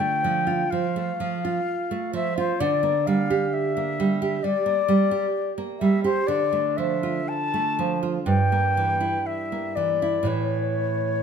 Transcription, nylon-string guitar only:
0.00 0.68 D3 medium
0.00 0.38 A3 medium
0.00 0.28 F4 soft
0.24 0.62 F3 medium
0.47 0.86 F4 medium
0.72 1.10 F3 soft
0.96 1.34 A3 soft
1.20 1.58 F3 medium
1.45 2.20 F4 medium
1.91 2.28 A3 medium
2.13 2.51 F3 medium
2.38 2.61 F4 medium
2.60 4.40 D3 medium
2.83 3.21 A#3 medium
3.07 3.45 G3 medium
3.30 4.04 G4 medium
3.77 4.13 A#3 medium
4.00 4.36 G3 medium
4.22 4.58 G4 medium
4.44 4.80 G3 medium
4.66 5.02 A#3 medium
4.88 5.25 G3 medium
5.11 5.85 G4 medium
5.58 5.95 A#3 medium
5.81 6.18 G3 medium
6.04 6.28 G4 medium
6.28 8.23 D3 medium
6.53 6.93 A3 medium
6.78 7.19 F3 medium
7.03 7.83 F4 medium
7.54 7.93 A3 medium
7.79 8.17 F3 medium
8.03 8.27 F4 medium
8.26 10.23 G2 medium
8.52 8.91 A#3 medium
8.77 9.16 E3 soft
9.01 9.81 E4 soft
9.52 9.92 A#3 soft
9.77 10.17 E3 soft
10.02 10.28 E4 soft
10.23 11.23 A2 medium
10.23 11.23 E3 soft
10.23 11.23 A3 soft

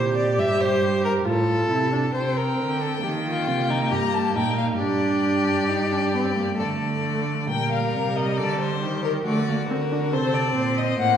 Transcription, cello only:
0.00 0.40 A#2 medium
0.39 1.25 G2 medium
1.26 1.69 A2 medium
1.70 2.13 C3 medium
2.14 2.56 C3 medium
2.59 3.02 D3 medium
3.04 3.49 D#3 medium
3.47 3.93 C3 medium
3.92 4.37 G2 medium
4.35 4.79 A#2 medium
4.80 6.61 G2 medium
6.60 7.50 D3 medium
7.51 7.97 A#2 medium
7.95 8.40 C3 medium
8.39 8.85 D3 medium
8.83 9.26 D#3 medium
9.26 9.69 D3 medium
9.70 10.15 D3 medium
10.13 10.56 C3 medium
10.57 10.99 A#2 medium
10.99 11.17 A2 medium

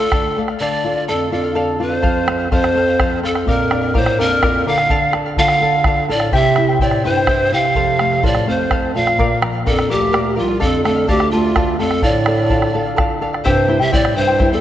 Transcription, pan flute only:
0.00 0.37 A4 loud
0.60 1.04 D5 medium
1.08 1.30 A4 medium
1.33 1.83 A4 medium
1.81 1.94 B4 medium
1.94 2.51 C5 medium
2.52 3.19 C5 loud
3.25 3.51 A4 medium
3.49 3.96 A#4 medium
3.96 4.22 C5 medium
4.20 4.69 A#4 medium
4.68 5.11 F5 loud
5.39 6.06 F5 loud
6.11 6.32 D5 medium
6.35 6.78 E5 medium
6.82 7.03 D5 medium
7.05 7.55 C5 medium
7.54 8.27 F5 medium
8.26 8.48 D5 medium
8.49 8.93 C5 medium
8.96 9.37 F5 medium
9.67 9.89 A4 medium
9.91 10.35 G4 medium
10.39 10.60 F4 medium
10.61 10.83 A4 medium
10.84 11.07 A4 medium
11.09 11.33 G4 medium
11.31 11.79 F4 medium
11.80 12.05 A4 medium
12.04 12.99 D5 medium
13.45 13.83 C5 medium
13.81 13.95 E5 medium
13.93 14.19 D5 medium
14.17 14.52 C5 medium
14.53 14.61 A4 medium

